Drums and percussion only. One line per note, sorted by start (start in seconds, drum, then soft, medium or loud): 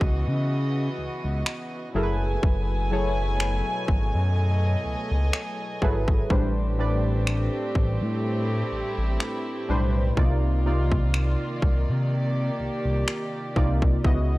0.01 kick medium
1.46 finger snap loud
2.43 kick loud
3.40 finger snap loud
3.88 kick medium
5.33 finger snap loud
5.82 kick medium
6.08 kick loud
6.30 kick loud
7.27 finger snap loud
7.75 kick medium
9.20 finger snap loud
10.17 kick loud
10.92 kick medium
11.14 finger snap loud
11.62 kick medium
13.08 finger snap loud
13.56 kick medium
13.82 kick medium
14.04 kick loud